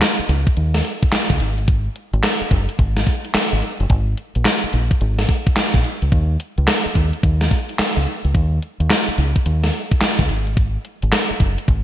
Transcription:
0.02 snare, clap, closed hi-hat
0.19 muted fingered electric bass stroke
0.29 C#2, closed hi-hat
0.47 kick, closed hi-hat
0.57 D#2, closed hi-hat
0.74 snare
0.85 closed hi-hat
1.03 kick, closed hi-hat
1.12 muted fingered electric bass stroke, snare, clap, closed hi-hat
1.30 C#2, kick
1.40 G#1, closed hi-hat
1.58 closed hi-hat
1.68 kick, closed hi-hat
1.96 closed hi-hat
2.13 G#1, closed hi-hat
2.23 snare, clap, closed hi-hat
2.41 muted fingered electric bass stroke
2.51 F#1, kick, closed hi-hat
2.69 closed hi-hat
2.79 G#1, kick, closed hi-hat
2.97 snare
3.07 kick, closed hi-hat
3.25 closed hi-hat
3.34 muted fingered electric bass stroke, snare, clap, closed hi-hat
3.53 G#1
3.62 closed hi-hat
3.80 F#1, closed hi-hat
3.90 G#1, kick, closed hi-hat
4.17 closed hi-hat
4.35 A#1, closed hi-hat
4.45 snare, clap, closed hi-hat
4.64 muted fingered electric bass stroke
4.73 A#1, closed hi-hat
4.91 kick, closed hi-hat
5.01 G#1, closed hi-hat
5.19 snare
5.29 kick, closed hi-hat
5.46 kick, closed hi-hat
5.56 muted fingered electric bass stroke, snare, clap, closed hi-hat
5.74 A#1, kick
5.84 closed hi-hat
6.02 C#2, closed hi-hat
6.12 D#2, kick, closed hi-hat
6.40 closed hi-hat
6.58 C#2, closed hi-hat
6.68 snare, clap, closed hi-hat
6.86 muted fingered electric bass stroke
6.95 D#2, kick, closed hi-hat
7.13 closed hi-hat
7.23 D#2, kick, closed hi-hat
7.41 snare
7.51 kick, closed hi-hat
7.69 closed hi-hat
7.79 muted fingered electric bass stroke, snare, clap, closed hi-hat
7.97 C#2
8.07 closed hi-hat
8.25 C#2, closed hi-hat
8.35 D#2, kick, closed hi-hat
8.62 closed hi-hat
8.80 D#2, closed hi-hat
8.90 snare, clap, closed hi-hat
9.08 muted fingered electric bass stroke
9.18 C#2, closed hi-hat
9.36 kick, closed hi-hat
9.46 D#2, closed hi-hat
9.64 snare
9.73 closed hi-hat
9.91 kick, closed hi-hat
10.01 muted fingered electric bass stroke, snare, clap, closed hi-hat
10.19 C#2, kick
10.29 G#1, closed hi-hat
10.47 closed hi-hat
10.57 kick, closed hi-hat
10.85 closed hi-hat
11.02 G#1, closed hi-hat
11.12 snare, clap, closed hi-hat
11.31 muted fingered electric bass stroke
11.40 F#1, kick, closed hi-hat
11.58 closed hi-hat
11.68 G#1, kick, closed hi-hat

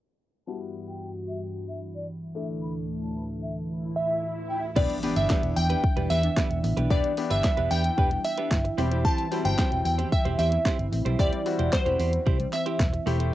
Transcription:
0.47 G2 E3 G3 B3 E4 F#4 A5
0.88 G5
1.28 E5
1.68 E5
1.95 D5
2.35 D2 A2 A3 D4 E4 A4 E5
2.62 B5, swell
3.02 A5
3.42 E5
3.96 E5
4.50 G5
4.76 E1 E3 B3 D4 E4 G4 B4 D5, kick, crash, impact
4.90 G3, closed hi-hat
5.03 B3 D4 E4 G4 B4, open hi-hat
5.16 G1 B3 D4 G4 B4 E5, closed hi-hat
5.29 B3 D4 G4 B4, kick, snare, clap
5.43 E1, muted clean electric guitar stroke, closed hi-hat
5.56 E2 G5, muted clean electric guitar stroke, open hi-hat
5.70 B3 D4 G4 B4, closed hi-hat
5.83 muted clean electric guitar stroke, kick
5.97 E1 G3 B3 D4 G4 B4, closed hi-hat
6.10 E2 B3 D4 G4 B4 E5, open hi-hat
6.23 D4, muted clean electric guitar stroke, closed hi-hat
6.37 B3 D4 E4 G4 B4, kick, snare, clap
6.50 E1, muted clean electric guitar stroke, closed hi-hat
6.64 A1 B3, muted clean electric guitar stroke, open hi-hat
6.77 B1 G3 B3 D4 G4 B4, closed hi-hat
6.90 E3 B3 D4 E4 G4 B4 D5, kick
7.04 G3, muted clean electric guitar stroke, closed hi-hat
7.17 B3 D4 E4 G4, muted clean electric guitar stroke, open hi-hat
7.30 G1 B3 D4 G4 B4 E5, closed hi-hat
7.44 muted clean electric guitar stroke, kick, snare, clap
7.57 E1 B3 D4 G4 B4, closed hi-hat
7.71 E2 B3 D4 G4 B4 G5, open hi-hat
7.84 muted clean electric guitar stroke, closed hi-hat
7.97 E1 B3 D4 G4 B4, kick
8.11 G3, muted clean electric guitar stroke, closed hi-hat
8.24 B3 E5, muted clean electric guitar stroke, open hi-hat
8.38 B3 D4 G4 B4, closed hi-hat
8.51 G1 E4, muted clean electric guitar stroke, kick, snare, clap
8.65 muted clean electric guitar stroke, closed hi-hat
8.78 E1 E3 G3 C4 E4 G4 C5, open hi-hat
8.91 G3 C4 E4 G4 C5, closed hi-hat
9.05 E3 C4 E4 G4 C5 A5, kick
9.18 G3, closed hi-hat
9.31 F#3 G3 C4 E4 G4 C5, open hi-hat
9.45 G1 C4 E4 G4 C5 G5, closed hi-hat
9.58 C4 E4 G4 C5, kick, snare, clap
9.72 E1, muted clean electric guitar stroke, closed hi-hat
9.85 E2 G5, muted clean electric guitar stroke, open hi-hat
9.98 C4 E4 G4 C5, closed hi-hat
10.12 E5, muted clean electric guitar stroke, kick
10.25 E1 G3 C4 E4 G4 C5, closed hi-hat
10.38 E2 C4 E4 G4 C5 E5, open hi-hat
10.52 E4, muted clean electric guitar stroke, closed hi-hat
10.65 C4 E4 G4 C5 E5, kick, snare, clap
10.79 G1, muted clean electric guitar stroke, closed hi-hat
10.92 A1 C4, muted clean electric guitar stroke, open hi-hat
11.05 B1 G3 C4 E4 G4 C5, closed hi-hat
11.19 E1 E3 G3 C4 E4 G4 C5 D5, kick
11.32 G3, muted clean electric guitar stroke, closed hi-hat
11.46 G3 C4 E4 F#4, muted clean electric guitar stroke, open hi-hat
11.59 E1 C4 E4 G4 C5, closed hi-hat
11.73 C5, kick, snare, clap
11.86 E1 C4 E4 G4 C5, closed hi-hat
11.99 E2 C4 E4 G4 C5, open hi-hat
12.13 muted clean electric guitar stroke, closed hi-hat
12.26 C2 C4 E4 G4 C5, kick
12.39 G3, muted clean electric guitar stroke, closed hi-hat
12.53 C4 E5, muted clean electric guitar stroke, clap, open hi-hat
12.66 C4 E4 G4 C5, closed hi-hat
12.80 E1 E5, kick, snare, clap
12.93 muted clean electric guitar stroke, closed hi-hat
13.06 E1 A3 C4 E4 G4 C5, open hi-hat
13.19 A3 E4 G4 C5, closed hi-hat

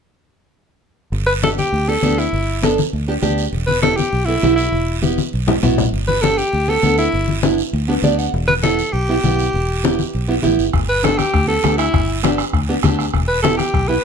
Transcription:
1.12 G1, high conga, long guiro
1.27 B4
1.42 B3 D4 G4 A4, high conga, short guiro
1.58 G4, high conga, short guiro
1.73 D2, high conga, long guiro
1.88 B3 D4 G4 A4
2.02 D2 B3 D4 G4, high conga, short guiro
2.18 E4, short guiro
2.33 G1, high conga, long guiro
2.63 B3 D4 A4, high conga, short guiro
2.78 high conga, short guiro
2.93 D2, high conga, long guiro
3.08 B3 D4 G4
3.22 D2 B3 D4 G4, high conga, short guiro
3.38 short guiro
3.53 E1, high conga, long guiro
3.67 B4, high conga
3.82 B3 E4 G4 A4, high conga, short guiro
3.96 G4, high conga, short guiro
4.13 B1, high conga, long guiro
4.25 B3 E4 A4
4.43 B1 B3 E4 G4, high conga, short guiro
4.56 E4, short guiro
4.72 E1, high conga, long guiro
5.02 B3 E4 G4, high conga, short guiro
5.18 high conga, short guiro
5.33 B1, long guiro
5.47 B3 E4 G4, low conga
5.63 B1 B3 E4 F#4, low conga, short guiro
5.78 low conga, short guiro
5.93 G1, high conga, long guiro
6.08 B4, high conga
6.22 B3 D4 G4 A4, high conga, short guiro
6.38 G4, short guiro
6.53 D2, high conga, long guiro
6.68 B3 D4 G4 A4
6.83 D2 B3 D4 A4, high conga, short guiro
6.98 E4, short guiro
7.12 G1, high conga, long guiro
7.28 high conga
7.43 B3 D4 E4, high conga, short guiro
7.58 short guiro
7.73 D2, high conga, long guiro
7.88 B3 D4 G4 B4
8.02 D2 B3 D4 G4 D5, high conga, short guiro
8.18 F#5, short guiro
8.34 E1, high conga, long guiro
8.47 B4, high conga
8.63 B3 E4 G4 A4, high conga, short guiro
8.79 short guiro
8.93 B1 G4, high conga, long guiro
9.09 B3 E4 G4
9.24 B1 B3 E4 G4, high conga, short guiro
9.39 short guiro
9.53 E1, high conga, long guiro
9.84 B3 E4 G4, high conga, short guiro
9.99 high conga, short guiro
10.13 B1, high conga, long guiro
10.28 B3 E4 G4
10.42 A1 B3 E4 G4, high conga, short guiro
10.59 G1, short guiro
10.73 G1, bombo low, bombo rim, high conga, long guiro
10.89 B4
11.03 B3 D4 G4 A4, bombo rim, high conga, short guiro
11.18 G4, bombo rim, high conga, short guiro
11.34 D2, bombo low, bombo rim, high conga, long guiro
11.47 B3 D4 G4 A4
11.63 D2 B3 D4 G4, bombo rim, high conga, short guiro
11.78 E4, bombo rim, short guiro
11.94 G1, bombo low, bombo rim, high conga, long guiro
12.23 B3 D4 G4, bombo rim, high conga, short guiro
12.38 bombo rim, short guiro
12.53 D2, bombo low, bombo rim, high conga, long guiro
12.69 B3 D4 G4
12.83 D2 B3 D4 G4, bombo low, bombo rim, high conga, short guiro
12.99 bombo rim, short guiro
13.14 E1, bombo low, bombo rim, high conga, long guiro
13.28 B4
13.42 B3 E4 G4 A4, bombo rim, high conga, short guiro
13.57 G4, bombo rim, high conga, short guiro
13.74 B1, bombo low, bombo rim, high conga, long guiro
13.88 B3 E4 G4 B4

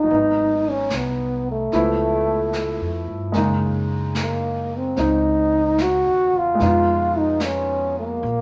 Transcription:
Already playing: G#3 A#3 C#4 D#4
0.04 F#3
0.09 G#1 B3, brush sweep
0.15 D#4
0.70 C#4
0.90 C2, snare, hi-hat pedal
0.96 B3
1.51 A3
1.72 C#2 F3 A3 B3 E4, brush sweep, snare
2.53 snare, hi-hat pedal
2.81 F2
3.07 G2
3.32 F#2 C#3 G#3 A#3, brush sweep, snare
3.37 D#4
4.15 snare, hi-hat pedal
4.22 A#3
4.76 C4
4.96 C#2 C4 D#4, brush sweep, snare
5.01 D#4
5.78 F#4, snare, hi-hat pedal
6.07 D#2
6.33 E2 F4
6.55 B2 G#3
6.60 F2 D#4, brush sweep, snare
6.66 F4
7.18 D#4
7.40 C#4, snare, hi-hat pedal
7.99 A#3
8.21 A#1, brush sweep

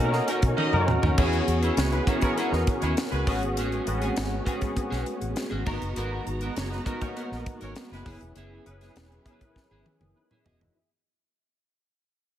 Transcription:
Already playing: B2 A#3 C#4 D#4 A#4
0.00 F#4 A4
0.05 A#4
0.12 A#3 F#4 D#5, muted clean electric guitar stroke, snare
0.28 C#4 D#4 A#4, closed hi-hat
0.42 B2, muted clean electric guitar stroke, kick, closed hi-hat
0.57 A#3 C#4 D#4 F#4 A#4 D#5, high tom
0.73 F#2 C#4 D#4 F#4 A#4, muted clean electric guitar stroke, mid tom
0.87 E2, muted clean electric guitar stroke, mid tom
1.02 D#2 C#4 D#4 A#4, floor tom
1.16 E2 E3 G#3 B3 C#4 E4 F#4 G#4 C#5, kick, crash
1.33 closed hi-hat
1.47 E2, muted clean electric guitar stroke, closed hi-hat
1.62 C#4 E4 G#4 B4 E5, closed hi-hat
1.77 C#2 G#3 E4 C#5, snare, closed hi-hat
1.92 G#3 E4 B4, muted clean electric guitar stroke, closed hi-hat
2.07 B3 C#4 E4 F#4 G#4 A#4, kick, closed hi-hat
2.21 G#3 B3 C#4 E4 F#4 A#4 C#5, kick, closed hi-hat
2.36 G#3 C#4 E4 G#4 C#5, closed hi-hat
2.52 E2 D#4 B4 D#5, muted clean electric guitar stroke, snare
2.67 muted clean electric guitar stroke, kick, closed hi-hat
2.81 D#2 G#3 E4 G#4 C#5, closed hi-hat
2.85 C#4
2.97 snare, closed hi-hat
3.11 C#2 G#3 F#4 B4, muted clean electric guitar stroke, closed hi-hat
3.26 A1 G#3 A3 B3 C#4 F#4 G#4, kick, open hi-hat
3.42 G#1, muted clean electric guitar stroke, closed hi-hat
3.57 A1 C#4 F#4 G#4, closed hi-hat
3.72 closed hi-hat
3.87 A1 B3 C4 F#4 B4, closed hi-hat
3.94 C#4
4.02 C#4 F#4 G#4, closed hi-hat
4.16 G#1, snare, closed hi-hat
4.33 muted clean electric guitar stroke
4.46 B3 C4 C#4 F#4 G#4, kick, closed hi-hat
4.53 C#4
4.61 muted clean electric guitar stroke, kick, closed hi-hat
4.76 muted clean electric guitar stroke, kick, closed hi-hat
4.90 B1 C#4 F#4 G#4, snare, closed hi-hat
5.06 muted clean electric guitar stroke, closed hi-hat
5.21 A1, muted clean electric guitar stroke, closed hi-hat
5.36 muted clean electric guitar stroke, snare, closed hi-hat
5.50 G#1 C#4 F#4 G#4
5.66 G#3 A#3 B3 D#4 F#4 A#4 A#5, kick, crash
5.73 B3
5.81 F#1, muted clean electric guitar stroke, closed hi-hat
5.96 G#1 F#3 B3 D#4 F#4 A#4 B4, closed hi-hat
6.26 G#1, muted clean electric guitar stroke, closed hi-hat
6.41 B3 F#4 A#4 D#5, closed hi-hat
6.56 F#1 C#4 A#4 C#5, muted clean electric guitar stroke, snare, closed hi-hat
6.70 F#3 D#4 B4, muted clean electric guitar stroke, snare
6.85 B3 D#4 F#4 A#4, kick, closed hi-hat
7.01 A#3 C#4 D#4 F#4 A#4 C#5, muted clean electric guitar stroke, kick, closed hi-hat
7.07 B3
7.16 B3 C#4 F#4 A#4 C#5, closed hi-hat
7.31 A#1 B3 A#4 D#5, muted clean electric guitar stroke, snare
7.46 muted clean electric guitar stroke, kick, closed hi-hat
7.61 G#1 B3 C#4 F#4 A#4 C#5, closed hi-hat
7.76 muted clean electric guitar stroke, snare, closed hi-hat
7.91 F#1 G#3 E4 B4, muted clean electric guitar stroke, snare
8.05 F#1 F#3 B3 C#4 E4 G#4 B4, kick, open hi-hat
8.21 E1, muted clean electric guitar stroke, closed hi-hat
8.36 F#1 B3 E4 G#4, closed hi-hat
8.66 F#1 C#4 E4 G#4 B4, muted clean electric guitar stroke, closed hi-hat
8.81 B3 E4 G#4, snare, closed hi-hat
8.96 E1, muted clean electric guitar stroke, snare, closed hi-hat
9.11 muted clean electric guitar stroke, closed hi-hat
9.25 B3 C#4 E4 G#4 A#4, kick, closed hi-hat
9.32 B4
9.41 muted clean electric guitar stroke, kick, closed hi-hat
9.56 muted clean electric guitar stroke, kick, snare
9.71 G#1 B3 E4 G#4
9.86 muted clean electric guitar stroke, high tom
10.00 F#1 B3 G#4, muted clean electric guitar stroke, high tom
10.16 D#4 B4, muted clean electric guitar stroke
10.30 B3 E4 G#4 C#5, mid tom
10.44 E1 B3 E4 F#4 G#4 D#5, floor tom
10.60 G#4 E5, muted clean electric guitar stroke, floor tom

